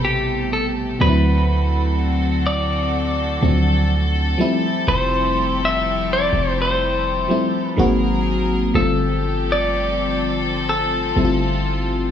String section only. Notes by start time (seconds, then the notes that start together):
Already playing: C3 A3 G4 A4
1.00 D3 C4 F#4 A4
4.39 F3 E4 G4
7.78 F#3 C4 G#4 A#4
8.75 F3 C4 G4 A4
10.68 F4